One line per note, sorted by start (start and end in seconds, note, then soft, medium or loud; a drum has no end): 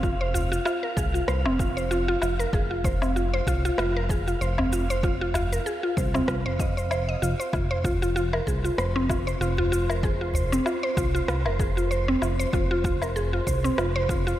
0.00 0.60 F1 loud
0.00 0.13 F4 medium
0.00 7.55 F5 medium
0.00 kick loud
0.04 shaker soft
0.21 0.33 C5 loud
0.34 0.51 F4 loud
0.34 udu medium
0.34 shaker medium
0.52 0.64 F4 loud
0.52 shaker soft
0.65 0.82 F4 loud
0.65 low woodblock medium
0.65 shaker soft
0.83 0.96 A#4 medium
0.97 1.21 C2 medium
0.97 1.13 G#4 medium
0.97 kick loud
0.97 shaker medium
1.14 1.27 F4 medium
1.14 shaker soft
1.28 1.47 C2 medium
1.28 1.44 C5 medium
1.28 cross-stick medium
1.28 shaker soft
1.46 2.16 F1 medium
1.46 1.58 C4 loud
1.46 low woodblock medium
1.59 1.69 F4 medium
1.59 kick loud
1.59 shaker medium
1.77 1.89 C5 medium
1.77 shaker soft
1.91 2.07 F4 loud
1.91 shaker soft
2.08 2.21 F4 loud
2.22 2.46 F1 medium
2.22 2.39 F4 loud
2.22 low woodblock medium
2.22 shaker medium
2.39 2.53 A#4 medium
2.39 shaker soft
2.53 3.41 F1 loud
2.53 2.70 G#4 medium
2.53 kick loud
2.53 shaker soft
2.71 2.83 F4 medium
2.84 3.00 C5 medium
2.84 kick loud
2.84 udu medium
2.84 shaker medium
3.02 3.14 C4 medium
3.02 low woodblock medium
3.02 shaker soft
3.16 3.26 F4 medium
3.16 shaker soft
3.34 3.46 C5 medium
3.47 3.71 C2 medium
3.47 3.64 F4 loud
3.47 kick medium
3.47 shaker medium
3.65 3.78 F4 loud
3.65 shaker soft
3.78 4.35 F1 medium
3.78 3.95 F4 loud
3.78 cross-stick medium
3.78 low woodblock medium
3.78 shaker soft
3.97 4.09 A#4 medium
4.09 4.26 G#4 medium
4.09 kick medium
4.09 shaker medium
4.28 4.40 F4 medium
4.28 shaker soft
4.41 5.60 F1 medium
4.41 4.57 C5 medium
4.41 shaker soft
4.58 4.71 C4 medium
4.58 udu medium
4.58 low woodblock medium
4.73 4.82 F4 medium
4.73 shaker medium
4.90 5.02 C5 loud
4.90 shaker soft
5.03 5.20 F4 medium
5.03 kick loud
5.03 shaker soft
5.21 5.34 F4 medium
5.34 5.51 F4 loud
5.34 udu medium
5.34 low woodblock medium
5.34 shaker medium
5.53 5.65 A#4 medium
5.53 shaker soft
5.66 5.83 G#4 medium
5.66 shaker soft
5.83 5.96 F4 medium
5.97 6.21 C2 medium
5.97 6.13 C5 medium
5.97 kick medium
5.97 shaker medium
6.14 6.27 C4 loud
6.14 udu medium
6.14 low woodblock medium
6.14 shaker soft
6.28 6.47 C2 medium
6.28 6.38 F4 medium
6.28 kick medium
6.28 cross-stick medium
6.28 shaker soft
6.46 7.16 F1 medium
6.46 6.58 C5 loud
6.59 6.75 D#5 medium
6.59 kick loud
6.59 shaker medium
6.77 6.89 C5 medium
6.77 shaker soft
6.91 7.01 C5 loud
6.91 low woodblock medium
6.91 shaker soft
7.09 7.22 D#5 medium
7.22 7.35 F1 medium
7.22 7.32 F4 medium
7.22 shaker medium
7.40 7.52 C5 medium
7.40 shaker soft
7.53 8.41 F1 medium
7.53 7.63 F4 medium
7.53 14.39 C5 medium
7.53 kick loud
7.53 low woodblock medium
7.53 shaker soft
7.71 7.83 C5 loud
7.84 8.01 F4 loud
7.84 kick loud
7.84 udu medium
7.84 shaker medium
8.02 8.15 F4 medium
8.02 shaker soft
8.16 8.32 F4 loud
8.16 shaker soft
8.33 8.46 A#4 medium
8.33 low woodblock medium
8.47 8.71 C2 medium
8.47 8.64 G#4 medium
8.47 kick medium
8.47 shaker medium
8.64 8.77 F4 medium
8.64 shaker soft
8.78 9.35 F1 medium
8.78 8.94 C5 medium
8.78 cross-stick medium
8.78 shaker soft
8.96 9.08 C4 loud
9.09 9.20 F4 medium
9.09 kick loud
9.09 low woodblock medium
9.09 shaker medium
9.27 9.39 C5 medium
9.27 shaker soft
9.40 10.60 F1 medium
9.40 9.57 F4 loud
9.40 shaker soft
9.57 9.71 F4 loud
9.57 udu medium
9.72 9.89 F4 medium
9.72 shaker medium
9.90 10.03 A#4 medium
9.90 low woodblock medium
9.90 shaker soft
10.03 10.20 G#4 medium
10.03 kick loud
10.03 shaker soft
10.21 10.33 F4 medium
10.34 10.50 C5 medium
10.34 udu medium
10.34 shaker medium
10.52 10.65 C4 loud
10.52 shaker soft
10.66 10.76 F4 medium
10.66 low woodblock medium
10.66 shaker soft
10.83 10.96 C5 loud
10.97 11.21 C2 medium
10.97 11.13 F4 loud
10.97 kick loud
10.97 shaker medium
11.15 11.27 F4 loud
11.15 shaker soft
11.28 11.47 C2 medium
11.28 11.45 F4 loud
11.28 cross-stick medium
11.28 shaker soft
11.46 12.16 F1 medium
11.46 11.59 A#4 medium
11.46 low woodblock medium
11.59 11.76 G#4 medium
11.59 kick loud
11.59 shaker medium
11.77 11.89 F4 medium
11.77 shaker soft
11.91 12.07 C5 medium
11.91 shaker soft
12.08 12.21 C4 loud
12.22 12.46 F1 medium
12.22 12.32 F4 medium
12.22 low woodblock medium
12.22 shaker medium
12.39 12.52 C5 loud
12.39 shaker soft
12.53 13.41 F1 medium
12.53 12.70 F4 loud
12.53 kick loud
12.53 shaker soft
12.71 12.83 F4 loud
12.84 13.01 F4 loud
12.84 kick loud
12.84 udu medium
12.84 shaker medium
13.02 13.15 A#4 medium
13.02 low woodblock medium
13.02 shaker soft
13.16 13.32 G#4 medium
13.16 shaker soft
13.33 13.46 F4 medium
13.47 13.71 C2 medium
13.47 13.63 C5 medium
13.47 kick medium
13.47 shaker medium
13.64 13.77 C4 loud
13.64 shaker soft
13.78 14.35 F1 medium
13.78 13.88 F4 medium
13.78 cross-stick medium
13.78 low woodblock medium
13.78 shaker soft
13.96 14.08 C5 loud
14.09 14.26 F4 medium
14.09 kick loud
14.09 shaker medium
14.27 14.39 F4 loud
14.27 shaker soft